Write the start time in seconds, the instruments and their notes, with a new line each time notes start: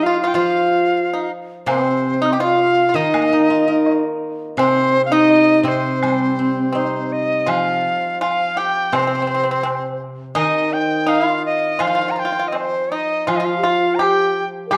Already playing: guzheng F3
0.03 xiao F4, pipa F4, dizi F5
0.20 xiao F4, pipa F4, dizi F5
0.27 dizi G5
0.34 guzheng F3, pipa F4, xiao F4, dizi F5
1.13 pipa D#4
1.66 guzheng C3, pipa C4, xiao C4, dizi C5, high woodblock
2.22 pipa D#4, dizi F6
2.28 dizi C6 D#6
2.33 pipa G4, dizi A#5
2.37 pipa F4, dizi F5 G5
2.41 xiao F4, low woodblock
2.89 pipa F4
2.94 guzheng D#3, pipa D#4, xiao D#4, dizi D#5
3.14 guzheng A#3, high woodblock
3.33 guzheng D#4
3.50 guzheng F4
3.68 xiao D#4, guzheng A#4
3.86 low woodblock
4.57 guzheng C3, xiao C4, pipa C4, dizi C5, high woodblock
5.05 dizi F5
5.12 pipa D#4, xiao D#4, dizi D#5
5.30 low woodblock
5.58 xiao D#4
5.63 guzheng C3, pipa C4, xiao C4
5.68 dizi C5
6.03 guzheng G3, high woodblock
6.39 guzheng C4
6.72 pipa C4, guzheng D#4, dizi C5, low woodblock
7.12 dizi D#5
7.46 guzheng F3, pipa F4, dizi F5, high woodblock
8.21 pipa F4, dizi F5, high woodblock
8.57 pipa G4, dizi G5
8.92 guzheng C3, pipa C4, dizi C5, high woodblock
8.99 pipa C4
9.07 pipa C4
9.22 pipa C4
9.27 pipa C4
9.34 pipa C4
9.43 pipa C4
9.51 pipa C4
9.63 pipa C4, high woodblock
10.35 guzheng D#3, pipa D#4, dizi D#5, high woodblock
10.73 dizi G5
10.81 pipa C4
11.06 pipa D#4, dizi F5, high woodblock
11.27 pipa F4
11.46 dizi D#5
11.79 guzheng F3, pipa F4, dizi F5, high woodblock
11.87 pipa F4
11.95 pipa F4
12.01 pipa F4
12.08 pipa F4, dizi A#5
12.16 pipa F4, dizi G5
12.25 pipa F4
12.32 pipa F4
12.39 pipa F4
12.48 dizi D#5
12.52 pipa C4, high woodblock, low woodblock
12.57 dizi C5
12.92 pipa D#4, dizi D#5
13.27 guzheng F3, pipa F4, xiao F4, dizi F5, high woodblock
13.36 pipa F4, dizi D#5
13.42 xiao F4, dizi F5
13.58 xiao G4
13.63 pipa F4, xiao F4, dizi F5
13.95 dizi A#5
13.99 pipa G4, xiao G4, dizi G5, high woodblock
14.67 xiao A#4
14.71 guzheng G3, pipa G4, xiao G4, high woodblock